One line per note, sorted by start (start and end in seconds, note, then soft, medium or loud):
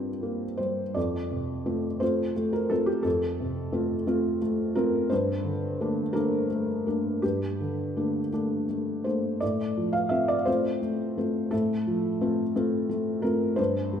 0.00 0.92 G2 soft
0.00 0.59 G3 soft
0.00 0.23 A#3 soft
0.00 0.45 C4 soft
0.00 0.98 F4 soft
0.00 0.59 G4 soft
0.23 0.82 A#3 soft
0.57 0.96 G3 soft
0.57 0.95 C5 medium
0.94 3.01 F2 soft
0.94 2.00 D5 medium
1.30 1.87 C3 soft
1.66 1.97 A3 soft
1.66 1.97 C4 soft
1.66 1.97 F4 soft
2.00 2.32 A3 soft
2.00 2.32 C4 soft
2.00 2.33 F4 soft
2.00 2.52 C5 medium
2.36 2.69 A3 soft
2.53 2.70 A#4 medium
2.70 3.02 A3 soft
2.70 3.02 C4 soft
2.70 3.02 F4 soft
2.70 2.87 A4 medium
2.86 3.04 G4 medium
3.03 5.06 F2 soft
3.03 4.41 A4 medium
3.40 3.94 C3 soft
3.72 4.04 A3 soft
3.72 4.03 C4 soft
3.72 4.04 F4 soft
4.07 4.38 A3 soft
4.07 4.38 C4 soft
4.07 4.38 F4 soft
4.42 4.75 A3 soft
4.75 5.07 A3 soft
4.75 5.07 C4 soft
4.75 5.08 F4 soft
4.75 5.10 A#4 medium
5.10 7.19 G2 medium
5.10 6.14 C5 medium
5.44 6.00 D3 soft
5.81 6.12 A3 soft
5.81 6.12 A#3 soft
5.81 6.12 D4 soft
6.13 6.46 A3 soft
6.13 6.47 A#3 soft
6.13 6.47 D4 soft
6.13 7.22 A#4 medium
6.51 6.85 A3 soft
6.87 7.19 A3 soft
6.87 7.20 A#3 soft
6.87 7.20 D4 soft
7.22 9.37 G2 soft
7.22 9.05 G4 medium
7.60 8.19 D3 soft
7.96 8.29 A3 soft
7.96 8.30 A#3 soft
7.96 8.29 D4 soft
8.32 8.65 A3 soft
8.32 8.65 A#3 soft
8.32 8.66 D4 soft
8.70 9.04 A3 soft
9.04 9.38 A3 soft
9.04 9.38 A#3 soft
9.04 9.38 D4 soft
9.04 9.41 C5 soft
9.40 11.49 A2 soft
9.40 9.94 D5 medium
9.77 10.33 F3 soft
9.93 10.11 F5 medium
10.09 10.43 A3 soft
10.09 10.43 C4 soft
10.09 10.43 F4 soft
10.09 10.28 E5 medium
10.28 10.46 D5 medium
10.45 10.79 A3 soft
10.45 10.79 C4 soft
10.45 10.79 F4 soft
10.45 11.52 C5 medium
10.82 11.16 A3 soft
11.18 11.49 A3 soft
11.18 11.49 C4 soft
11.18 11.49 F4 soft
11.51 13.54 A2 medium
11.51 12.89 A4 medium
11.87 12.42 F3 soft
12.21 12.52 A3 soft
12.21 12.52 C4 soft
12.21 12.53 F4 soft
12.55 12.86 A3 soft
12.55 12.86 C4 soft
12.55 12.87 F4 soft
12.89 13.22 A3 soft
13.22 13.55 A3 soft
13.22 13.55 C4 soft
13.22 13.55 F4 soft
13.22 13.58 A#4 medium
13.56 14.00 G2 medium
13.56 14.00 C5 medium
13.93 14.00 G3 soft